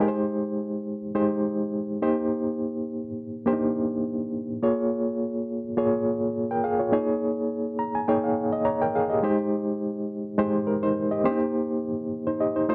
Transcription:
reed electric piano
Already playing: G#5
0.00 G#3 D#4 G4 A#4
0.08 C5
1.15 G#3 D#4 G4 C5
2.02 A#3 D#4 G4 C5
3.46 A#3 D4 G4 C5
3.53 D#4
4.62 A#3 F4 G#4 C#5
5.77 A#3 F4 G#4 C#5
6.51 A#4 G5
6.64 G#4 F5
6.79 F4 C#5
6.92 A#3 D#4 G#4 C#5
7.79 A#5
7.95 G#5
8.08 A#3 D#4 G#4 C#5 G5
8.24 F5
8.53 D#5
8.65 C#5 A#5
8.82 A#4 G5
8.95 G#4 F5
9.10 G4 D#5
9.23 G#3 D#4 G4 C5
10.38 G#3 D#4 G4 C5
10.67 A#4
10.83 D#4 C5
11.11 G4 D#5
11.24 A#3 C#4 G4 C5
11.31 D#4
12.27 D#4 C5
12.40 G4 D#5
12.56 D#4 C5
12.69 A3 D#4 F4 C5

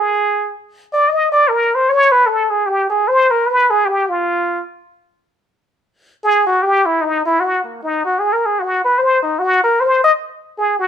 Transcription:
muted trumpet
Already playing: G#4
0.93 D5
1.09 D#5
1.32 D5
1.49 A#4
1.75 C5
1.89 C#5
2.12 B4
2.26 A4
2.50 G#4
2.66 G4
2.90 G#4
3.08 C5
3.31 A#4
3.47 B4
3.71 G#4
3.85 G4
4.09 F4
6.24 G#4
6.47 F#4
6.63 G4
6.86 E4
7.02 D#4
7.26 E4
7.40 F#4
7.64 A#3
7.83 D#4
8.05 F#4
8.19 G#4
8.33 A#4
8.46 G#4
8.59 F#4
8.85 B4
8.98 C5
9.23 D#4
9.39 F#4
9.64 A#4
9.81 C5
10.04 D#5
10.58 G#4
10.80 F#4

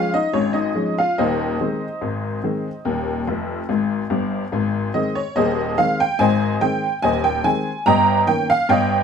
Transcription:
honky-tonk piano
Already playing: F3 G#3 C#4 F4 F5
0.14 D#4 D#5
0.33 G#1 G#2 C#4 C#5
0.53 D#4 D#5
0.75 F3 G#3 C#4
0.98 F4 F5
1.18 D#1 D#2 D#4 C5 D#5
1.61 D#3 G#3 C4
2.01 G#1 G#2
2.44 D#3 G#3 C4
2.85 D#1 D#2
3.27 F1 F2
3.69 G#1 G#2
4.10 G1 G2
4.52 G#1 G#2
4.94 D#3 G#3 C4 D#5
5.15 C#5
5.36 D#1 D#2 G#4 C5 D#5
5.78 D#3 G#3 C4 F5
6.00 G5
6.19 G#1 G#2 C5 D#5 G#5
6.61 D#3 G#3 C4 G5
7.02 D#1 D#2 C5 D#5 G#5
7.24 G5
7.44 D#3 G#3 C4 G#5
7.86 G1 G2 D#5 G5 A#5
8.27 D#3 A#3 C#4 G5
8.50 F5
8.69 G1 G2 C#5 D#5 G5

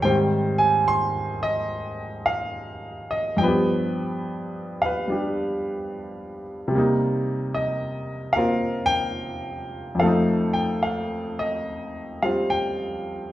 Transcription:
grand piano
Already playing: C#5
0.02 G#2 D#3 G3 C4 C5 G5
0.58 G#5
0.88 C6
1.43 D#5
2.26 F5
3.11 D#5
3.37 G2 F3 G5
3.43 B3 B4
3.48 G4
4.82 B4 F5
5.08 G3 D4
5.12 G4
6.68 C3 G3
6.75 A#3 D#4
7.54 D#5
8.33 A#3 A#4 F5
8.37 C4 F4
8.86 G5
9.95 F2 F3
10.00 A3 A4 F5
10.06 D#4
10.53 G5
10.83 F5
11.39 D#5
12.22 G3 C4 F4 F5
12.50 G5

